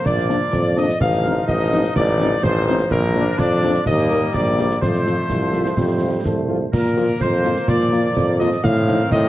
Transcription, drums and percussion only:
0.06 concert bass drum, snare
0.17 snare
0.30 snare
0.53 concert bass drum, snare
0.78 snare
0.89 snare
1.01 concert bass drum, snare, crash
1.13 snare
1.25 snare
1.49 concert bass drum, snare
1.72 snare
1.84 snare
1.96 concert bass drum, snare
2.08 snare
2.20 snare
2.43 concert bass drum, snare
2.67 snare
2.79 snare
2.91 concert bass drum, snare, crash
3.03 snare
3.15 snare
3.39 concert bass drum, snare
3.63 snare
3.75 snare
3.86 concert bass drum, snare
3.99 snare
4.11 snare
4.34 concert bass drum, snare
4.59 snare
4.71 snare
4.82 concert bass drum, snare, crash
4.94 snare
5.06 snare
5.30 concert bass drum, snare
5.54 snare
5.66 snare
5.77 concert bass drum, snare
6.25 concert bass drum, snare
6.73 concert bass drum, snare, crash
6.85 snare
6.97 snare
7.21 concert bass drum, snare
7.45 snare
7.57 snare
7.68 concert bass drum, snare
7.81 snare
7.93 snare
8.17 concert bass drum, snare
8.40 snare
8.52 snare
8.64 concert bass drum, snare, crash
8.76 snare
8.88 snare
9.12 concert bass drum, snare

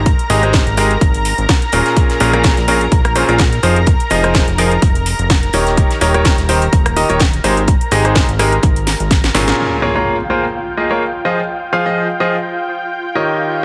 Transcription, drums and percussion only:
0.06 kick, closed hi-hat
0.19 closed hi-hat
0.30 closed hi-hat, open hi-hat
0.43 closed hi-hat
0.53 kick, snare, closed hi-hat
0.67 closed hi-hat
0.77 snare, closed hi-hat, open hi-hat
0.91 closed hi-hat
1.01 kick, closed hi-hat
1.14 closed hi-hat
1.25 closed hi-hat, open hi-hat
1.38 closed hi-hat
1.49 kick, snare, closed hi-hat
1.62 closed hi-hat
1.72 closed hi-hat, open hi-hat
1.86 snare, closed hi-hat
1.97 kick, closed hi-hat
2.10 snare, closed hi-hat
2.20 snare, closed hi-hat, open hi-hat
2.33 cross-stick, closed hi-hat
2.44 kick, snare, closed hi-hat
2.57 snare, closed hi-hat
2.68 closed hi-hat, open hi-hat
2.81 closed hi-hat
2.92 kick, closed hi-hat
3.05 cross-stick, closed hi-hat
3.16 closed hi-hat, open hi-hat
3.29 closed hi-hat
3.39 kick, snare, closed hi-hat
3.53 closed hi-hat
3.63 closed hi-hat, open hi-hat
3.76 closed hi-hat
3.87 kick, closed hi-hat
4.00 closed hi-hat
4.10 closed hi-hat, open hi-hat
4.24 cross-stick, closed hi-hat
4.34 kick, snare, closed hi-hat
4.48 closed hi-hat
4.58 snare, closed hi-hat, open hi-hat
4.71 closed hi-hat
4.82 kick, closed hi-hat
4.95 closed hi-hat
5.06 closed hi-hat, open hi-hat
5.19 closed hi-hat
5.30 kick, snare, closed hi-hat
5.43 closed hi-hat
5.53 closed hi-hat, open hi-hat
5.66 snare, closed hi-hat
5.77 kick, closed hi-hat
5.90 snare, closed hi-hat
6.01 snare, closed hi-hat, open hi-hat
6.14 cross-stick, closed hi-hat
6.25 kick, snare, closed hi-hat
6.38 snare, closed hi-hat
6.49 closed hi-hat, open hi-hat
6.62 closed hi-hat
6.73 kick, closed hi-hat
6.86 cross-stick, closed hi-hat
6.97 closed hi-hat, open hi-hat
7.09 closed hi-hat
7.20 kick, snare, closed hi-hat
7.33 closed hi-hat
7.44 closed hi-hat, open hi-hat
7.57 closed hi-hat
7.68 kick, closed hi-hat
7.81 closed hi-hat
7.91 closed hi-hat, open hi-hat
8.05 cross-stick, closed hi-hat
8.15 kick, snare, closed hi-hat
8.29 closed hi-hat
8.39 cross-stick, snare, closed hi-hat, open hi-hat
8.52 closed hi-hat
8.63 kick, closed hi-hat
8.76 closed hi-hat
8.87 snare, closed hi-hat, open hi-hat
9.00 closed hi-hat
9.11 kick, snare, closed hi-hat
9.24 snare, closed hi-hat
9.35 snare, open hi-hat
9.48 snare, closed hi-hat
12.44 closed hi-hat
12.68 closed hi-hat
12.92 closed hi-hat
13.39 closed hi-hat

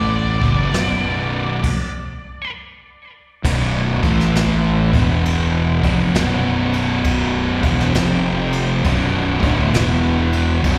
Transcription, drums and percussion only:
0.42 kick
0.73 snare, open hi-hat
1.64 kick, crash
3.45 kick, crash
4.03 kick, crash
4.20 snare
4.35 snare, crash
4.93 kick, crash
5.26 crash
5.83 kick, crash
6.15 snare, crash
6.73 crash
7.04 kick, crash
7.63 kick, crash
7.80 snare
7.94 snare, crash
8.53 crash
8.84 kick, crash
9.43 kick, crash
9.74 snare, crash
10.33 crash
10.64 kick, crash

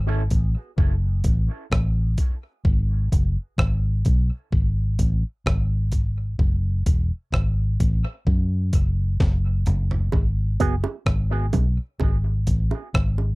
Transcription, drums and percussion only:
0.30 kick, closed hi-hat
0.78 kick
1.24 kick, closed hi-hat
1.72 kick, cross-stick
2.18 kick, closed hi-hat
2.65 kick
3.12 kick, closed hi-hat
3.58 kick, cross-stick
4.05 kick, closed hi-hat
4.52 kick
4.99 kick, closed hi-hat
5.46 kick, cross-stick
5.92 kick, closed hi-hat
6.39 kick
6.86 kick, closed hi-hat
7.32 kick, cross-stick
7.80 kick, closed hi-hat
8.27 kick
8.73 kick, closed hi-hat
9.20 kick, snare
9.66 closed hi-hat, mid tom
9.91 floor tom
10.12 kick, high bongo
10.60 kick, closed hi-hat
10.84 high bongo
11.06 kick, cross-stick
11.53 kick, closed hi-hat, high bongo, low bongo
12.00 kick, high bongo
12.47 kick, closed hi-hat
12.71 high bongo
12.94 kick, cross-stick
13.18 high bongo

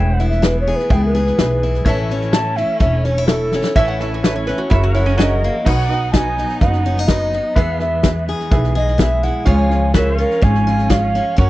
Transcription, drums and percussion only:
0.19 snare
0.31 snare
0.43 snare, hi-hat pedal
0.67 snare
0.79 snare
0.90 kick, snare
1.15 snare
1.27 snare
1.39 snare, hi-hat pedal
1.62 snare
1.74 snare
1.86 kick, snare
2.10 snare
2.21 snare
2.33 snare, hi-hat pedal
2.56 snare
2.80 kick, snare
3.04 snare
3.16 snare
3.28 snare, hi-hat pedal
3.52 snare
3.64 snare
3.76 kick, snare
4.00 snare
4.24 snare, hi-hat pedal
4.48 snare
4.71 kick, snare
4.95 snare
5.08 snare
5.19 snare, hi-hat pedal
5.43 snare
5.66 kick, snare, crash
5.90 snare
6.14 kick, snare, hi-hat pedal
6.37 snare
6.49 snare
6.61 kick, snare
6.73 snare
6.84 snare
6.97 snare
7.08 kick, snare, hi-hat pedal
7.32 snare
7.56 kick, snare
7.79 snare
8.03 kick, snare, hi-hat pedal
8.27 snare
8.40 snare
8.51 kick, snare
8.64 snare
8.75 snare
8.88 snare
8.99 kick, snare, hi-hat pedal
9.23 snare
9.46 kick, snare
9.70 snare
9.94 kick, snare, hi-hat pedal
10.18 snare
10.31 snare
10.42 kick, snare
10.55 snare
10.66 snare
10.79 snare
10.90 kick, snare, hi-hat pedal
11.14 snare
11.38 kick, snare

